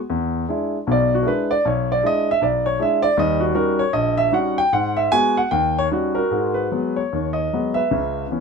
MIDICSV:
0, 0, Header, 1, 2, 480
1, 0, Start_track
1, 0, Key_signature, 5, "minor"
1, 0, Tempo, 391389
1, 112, Time_signature, 4, 2, 24, 8
1, 2511, Tempo, 381679
1, 5871, Tempo, 396563
1, 10329, End_track
2, 0, Start_track
2, 0, Title_t, "Grand piano"
2, 0, Program_c, 0, 0
2, 119, Note_on_c, 0, 40, 68
2, 533, Note_off_c, 0, 40, 0
2, 597, Note_on_c, 0, 56, 56
2, 598, Note_on_c, 0, 62, 48
2, 612, Note_on_c, 0, 64, 63
2, 928, Note_off_c, 0, 56, 0
2, 929, Note_off_c, 0, 62, 0
2, 936, Note_off_c, 0, 64, 0
2, 1066, Note_on_c, 0, 35, 76
2, 1072, Note_on_c, 0, 47, 65
2, 1123, Note_on_c, 0, 74, 87
2, 1405, Note_on_c, 0, 66, 65
2, 1408, Note_off_c, 0, 74, 0
2, 1489, Note_off_c, 0, 35, 0
2, 1492, Note_off_c, 0, 47, 0
2, 1507, Note_on_c, 0, 70, 57
2, 1527, Note_on_c, 0, 62, 49
2, 1533, Note_on_c, 0, 64, 57
2, 1539, Note_on_c, 0, 56, 53
2, 1547, Note_off_c, 0, 70, 0
2, 1560, Note_off_c, 0, 66, 0
2, 1565, Note_on_c, 0, 71, 79
2, 1848, Note_on_c, 0, 74, 92
2, 1863, Note_off_c, 0, 71, 0
2, 1870, Note_off_c, 0, 62, 0
2, 1873, Note_off_c, 0, 64, 0
2, 1876, Note_off_c, 0, 56, 0
2, 2018, Note_off_c, 0, 74, 0
2, 2026, Note_on_c, 0, 35, 77
2, 2048, Note_on_c, 0, 73, 73
2, 2343, Note_off_c, 0, 73, 0
2, 2353, Note_on_c, 0, 74, 88
2, 2442, Note_off_c, 0, 35, 0
2, 2489, Note_on_c, 0, 56, 53
2, 2495, Note_on_c, 0, 64, 63
2, 2498, Note_on_c, 0, 62, 49
2, 2509, Note_off_c, 0, 74, 0
2, 2533, Note_on_c, 0, 75, 90
2, 2829, Note_off_c, 0, 75, 0
2, 2832, Note_off_c, 0, 56, 0
2, 2836, Note_off_c, 0, 64, 0
2, 2837, Note_off_c, 0, 62, 0
2, 2843, Note_on_c, 0, 76, 96
2, 2972, Note_on_c, 0, 35, 65
2, 2990, Note_on_c, 0, 74, 73
2, 2996, Note_off_c, 0, 76, 0
2, 3279, Note_on_c, 0, 73, 92
2, 3292, Note_off_c, 0, 74, 0
2, 3392, Note_off_c, 0, 35, 0
2, 3446, Note_on_c, 0, 62, 48
2, 3449, Note_off_c, 0, 73, 0
2, 3449, Note_on_c, 0, 56, 57
2, 3459, Note_on_c, 0, 64, 60
2, 3487, Note_on_c, 0, 76, 82
2, 3740, Note_on_c, 0, 74, 96
2, 3776, Note_off_c, 0, 76, 0
2, 3781, Note_off_c, 0, 62, 0
2, 3782, Note_off_c, 0, 56, 0
2, 3787, Note_off_c, 0, 64, 0
2, 3916, Note_off_c, 0, 74, 0
2, 3927, Note_on_c, 0, 39, 73
2, 3931, Note_on_c, 0, 55, 80
2, 3951, Note_on_c, 0, 75, 89
2, 4217, Note_on_c, 0, 66, 67
2, 4247, Note_off_c, 0, 75, 0
2, 4345, Note_off_c, 0, 39, 0
2, 4347, Note_off_c, 0, 55, 0
2, 4375, Note_off_c, 0, 66, 0
2, 4394, Note_on_c, 0, 66, 63
2, 4395, Note_on_c, 0, 61, 52
2, 4397, Note_on_c, 0, 55, 62
2, 4406, Note_on_c, 0, 70, 80
2, 4407, Note_on_c, 0, 63, 52
2, 4704, Note_on_c, 0, 73, 91
2, 4716, Note_off_c, 0, 70, 0
2, 4737, Note_off_c, 0, 61, 0
2, 4737, Note_off_c, 0, 66, 0
2, 4738, Note_off_c, 0, 55, 0
2, 4743, Note_off_c, 0, 63, 0
2, 4879, Note_off_c, 0, 73, 0
2, 4881, Note_on_c, 0, 75, 87
2, 4884, Note_on_c, 0, 34, 76
2, 5186, Note_on_c, 0, 76, 100
2, 5196, Note_off_c, 0, 75, 0
2, 5310, Note_off_c, 0, 34, 0
2, 5363, Note_off_c, 0, 76, 0
2, 5364, Note_on_c, 0, 55, 54
2, 5370, Note_on_c, 0, 63, 54
2, 5373, Note_on_c, 0, 61, 52
2, 5380, Note_on_c, 0, 66, 64
2, 5394, Note_on_c, 0, 78, 80
2, 5697, Note_on_c, 0, 79, 105
2, 5698, Note_off_c, 0, 78, 0
2, 5709, Note_off_c, 0, 55, 0
2, 5712, Note_off_c, 0, 63, 0
2, 5713, Note_off_c, 0, 61, 0
2, 5717, Note_off_c, 0, 66, 0
2, 5863, Note_off_c, 0, 79, 0
2, 5879, Note_on_c, 0, 44, 72
2, 5886, Note_on_c, 0, 78, 85
2, 6169, Note_on_c, 0, 76, 94
2, 6178, Note_off_c, 0, 78, 0
2, 6285, Note_off_c, 0, 44, 0
2, 6334, Note_off_c, 0, 76, 0
2, 6353, Note_on_c, 0, 80, 117
2, 6355, Note_on_c, 0, 56, 63
2, 6359, Note_on_c, 0, 59, 53
2, 6364, Note_on_c, 0, 66, 59
2, 6653, Note_off_c, 0, 80, 0
2, 6664, Note_on_c, 0, 78, 88
2, 6680, Note_off_c, 0, 56, 0
2, 6682, Note_off_c, 0, 59, 0
2, 6684, Note_off_c, 0, 66, 0
2, 6823, Note_off_c, 0, 78, 0
2, 6830, Note_on_c, 0, 79, 96
2, 6833, Note_on_c, 0, 39, 70
2, 7139, Note_off_c, 0, 79, 0
2, 7161, Note_on_c, 0, 73, 98
2, 7256, Note_off_c, 0, 39, 0
2, 7260, Note_off_c, 0, 73, 0
2, 7316, Note_on_c, 0, 63, 47
2, 7318, Note_on_c, 0, 55, 59
2, 7323, Note_on_c, 0, 61, 52
2, 7334, Note_on_c, 0, 66, 62
2, 7600, Note_on_c, 0, 70, 85
2, 7622, Note_off_c, 0, 66, 0
2, 7641, Note_on_c, 0, 66, 55
2, 7657, Note_off_c, 0, 63, 0
2, 7658, Note_off_c, 0, 55, 0
2, 7661, Note_off_c, 0, 61, 0
2, 7796, Note_on_c, 0, 56, 59
2, 7797, Note_on_c, 0, 44, 58
2, 8070, Note_off_c, 0, 70, 0
2, 8078, Note_on_c, 0, 71, 70
2, 8223, Note_off_c, 0, 44, 0
2, 8223, Note_off_c, 0, 56, 0
2, 8289, Note_on_c, 0, 56, 46
2, 8290, Note_on_c, 0, 54, 45
2, 8305, Note_on_c, 0, 59, 50
2, 8552, Note_off_c, 0, 71, 0
2, 8563, Note_off_c, 0, 66, 0
2, 8588, Note_on_c, 0, 73, 73
2, 8625, Note_off_c, 0, 54, 0
2, 8625, Note_off_c, 0, 56, 0
2, 8633, Note_off_c, 0, 59, 0
2, 8786, Note_on_c, 0, 39, 59
2, 9032, Note_on_c, 0, 75, 77
2, 9091, Note_off_c, 0, 73, 0
2, 9195, Note_off_c, 0, 39, 0
2, 9278, Note_on_c, 0, 54, 50
2, 9285, Note_on_c, 0, 56, 44
2, 9287, Note_on_c, 0, 59, 52
2, 9501, Note_off_c, 0, 75, 0
2, 9531, Note_on_c, 0, 76, 84
2, 9554, Note_on_c, 0, 71, 56
2, 9593, Note_off_c, 0, 54, 0
2, 9596, Note_off_c, 0, 56, 0
2, 9597, Note_off_c, 0, 59, 0
2, 9731, Note_on_c, 0, 37, 63
2, 9736, Note_on_c, 0, 49, 71
2, 10133, Note_off_c, 0, 76, 0
2, 10134, Note_off_c, 0, 37, 0
2, 10137, Note_off_c, 0, 49, 0
2, 10211, Note_on_c, 0, 52, 48
2, 10222, Note_on_c, 0, 59, 46
2, 10226, Note_on_c, 0, 61, 57
2, 10329, Note_off_c, 0, 52, 0
2, 10329, Note_off_c, 0, 59, 0
2, 10329, Note_off_c, 0, 61, 0
2, 10329, Note_off_c, 0, 71, 0
2, 10329, End_track
0, 0, End_of_file